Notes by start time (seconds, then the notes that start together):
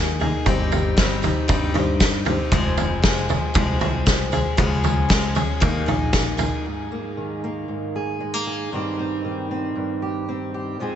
Already playing: D#2 A#3 D#4 G#4
0.20 A#3 D#4 G#4, floor tom
0.46 G1 G3 C4 D#4 G4, kick, floor tom, tambourine
0.72 floor tom, tambourine
0.97 G3 C4 D#4 G4, kick, snare, tambourine
1.22 C4 D#4 G4, floor tom, tambourine
1.48 G2 G3 C4 D#4 G4, kick, floor tom, tambourine
1.74 G2 C4 D#4 G4, floor tom, tambourine
2.00 kick, snare, tambourine
2.25 C4 D#4 G4, floor tom
2.52 F1 F2 C3 F3 G#3 C4 G#4, kick, floor tom, tambourine
2.77 floor tom, tambourine
3.02 F3 G#3 C4 G#4, kick, snare, tambourine
3.29 floor tom, tambourine
3.54 C2 F2 C3 F3 G#3 C4 G#4, kick, floor tom, tambourine
3.79 C2 F3 G#3 C4 G#4, floor tom, tambourine
4.06 kick, snare, tambourine
4.32 F3 G#3 C4 G#4, floor tom, tambourine
4.57 C#2 C#3 F3 G#3 C#4 G#4, kick, floor tom, tambourine
4.84 floor tom, tambourine
5.09 F3 G#3 C#4 G#4, kick, snare, tambourine
5.35 G#3 C#4 G#4, floor tom, tambourine
5.60 D#2 D#3 A#3 D#4 G#4, kick, floor tom, tambourine
5.86 A#1 A#3 D#4 G#4, floor tom, tambourine
6.13 kick, snare, tambourine
6.37 A#3 D#4 G#4, floor tom, tambourine
6.65 G#2 G#4
6.92 A#3
7.17 D#3
7.44 A#3
7.68 G#2
7.96 G#4
8.20 G#3
8.34 A#3
8.47 G#4
8.72 G2 D#3 C4 D#4 G4
8.99 C4
9.25 D#3
9.51 C4
9.75 G2
10.02 G4
10.29 C4
10.54 G4
10.79 F2 F3 G#3 C4 G#4